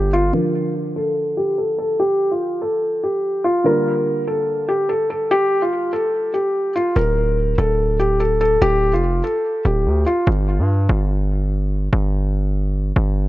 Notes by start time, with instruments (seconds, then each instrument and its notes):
Already playing: 808-style bass G1, grand piano A#3, felt piano G4
0.13 felt piano F4
0.33 grand piano D3 F3 F4, felt piano A#4
0.96 felt piano A4
1.37 felt piano G4
1.58 felt piano A4
1.78 felt piano A4
2.00 felt piano G4
2.31 felt piano F4
2.62 felt piano A4
3.03 felt piano G4
3.44 felt piano F4
3.64 grand piano D3 G3 A#3 F4, felt piano A#4
4.27 felt piano A4
4.68 felt piano G4
4.89 felt piano A4
5.10 felt piano A4
5.31 felt piano G4
5.62 felt piano F4
5.93 felt piano A4
6.34 felt piano G4
6.76 felt piano F4
6.96 808-style bass D1, felt piano A#4
7.58 808-style bass D1, felt piano A4
7.99 felt piano G4
8.20 felt piano A4
8.41 felt piano A4
8.62 808-style bass D1, felt piano G4
8.93 808-style bass F1, felt piano F4
9.24 felt piano A4
9.65 808-style bass D1, felt piano G4
9.86 808-style bass D2
10.06 felt piano F4
10.27 808-style bass G1
10.59 808-style bass G2
10.89 808-style bass G1
11.93 808-style bass G1
12.96 808-style bass G1